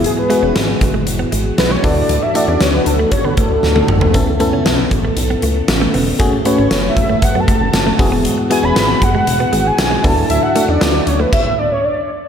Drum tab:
CC |----------------|----------------|----------------|----------------|
HH |x-x-x-x-x-x-x-o-|x-x-x-x-x-x-----|x-x-x-x-x-x-x-o-|x-x-x-x-x-x-x-o-|
TB |----------------|----------------|----------------|----x-------x---|
SD |----o-------o---|----o-------o---|----o-------o---|----o-------o---|
T1 |----------------|-------------o--|----------------|----------------|
T2 |----------------|--------------o-|----------------|----------------|
FT |----------------|---------------o|----------------|----------------|
BD |------o-------o-|--------o-o-----|o-----o---------|o-----o-o-o---o-|

CC |----------------|--------x-------|
HH |x-x-x-x-x-x-x-o-|x-x-x-x---------|
TB |----x-------x---|----x-----------|
SD |----o-------o---|----o-----------|
T1 |----------------|----------------|
T2 |----------------|----------------|
FT |----------------|----------------|
BD |------o-------o-|--------o-------|